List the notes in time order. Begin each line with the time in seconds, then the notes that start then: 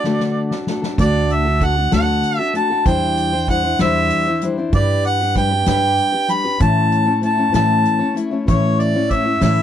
Already playing: D5
0.04 D3 A3 D4 F#4 A4, snare
0.20 snare
0.51 D4 F#4 A4, snare
0.67 A3 D4 F#4 A4, snare
0.82 D4 F#4 A4, snare
0.98 D2 D3 A3 D4 F#4 A4 D5, kick, closed hi-hat
1.30 E5, closed hi-hat
1.45 D4 F#4 A4
1.60 A3 D4 F#4 A4 F#5, kick, closed hi-hat
1.76 D4 F#4 A4
1.91 D2 D3 A3 D4 F#4 A4 F#5, snare, closed hi-hat
2.23 closed hi-hat
2.38 D4 F#4 A4 E5
2.53 A3 D4 F#4 A4 A5, closed hi-hat
2.70 D4 F#4 A4
2.85 E2 E3 G3 D4 E4 C5 G5, kick, closed hi-hat
3.17 closed hi-hat
3.33 D4 E4 C5
3.47 G3 D4 E4 C5 F#5, kick, closed hi-hat
3.64 D4 E4 C5
3.79 E2 E3 G3 D4 E4 C5 E5, snare, closed hi-hat
4.10 closed hi-hat
4.27 D4 E4 C5
4.41 G3 D4 E4 C5, closed hi-hat
4.57 D4 E4 C5
4.73 G2 G3 D4 G4 B4 D5, kick, closed hi-hat
5.05 F#5, closed hi-hat
5.21 D4 G4 B4
5.35 G3 D4 G4 B4 G5, kick, closed hi-hat
5.51 D4 G4 B4
5.66 G2 G3 D4 G4 B4 G5, snare, closed hi-hat
5.98 closed hi-hat
6.12 D4 G4 B4
6.28 G3 D4 G4 B4 B5, closed hi-hat
6.44 D4 G4 B4
6.59 A2 E3 A3 C#4 E4 C#5 A5, kick, closed hi-hat
6.92 closed hi-hat
7.05 A3 C#4 E4 C#5
7.21 A3 C#4 E4 C#5 A5, closed hi-hat
7.37 A3 C#4 E4 C#5
7.53 A2 E3 A3 C#4 E4 C#5 A5, snare, closed hi-hat
7.85 closed hi-hat
7.99 A3 C#4 E4 C#5
8.14 A3 C#4 E4 C#5, closed hi-hat
8.31 A3 C#4 E4 C#5
8.47 A2 E3 A3 C#4 E4 C#5, kick, closed hi-hat
8.80 D5, closed hi-hat
8.94 A3 C#4 E4 C#5
9.10 A3 C#4 E4 C#5 E5, kick, closed hi-hat
9.25 A3 C#4 E4 C#5
9.41 A2 E3 A3 C#4 E4 C#5 E5, snare, closed hi-hat